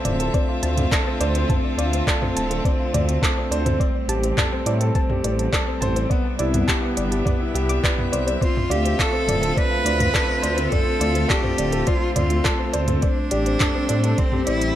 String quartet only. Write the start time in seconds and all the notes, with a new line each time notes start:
Already playing: D3 A3 C4 F4 E5
3.80 G3
6.10 C3 B3 D4 E5
8.41 D3 A3 C4 F4
13.05 G3 C4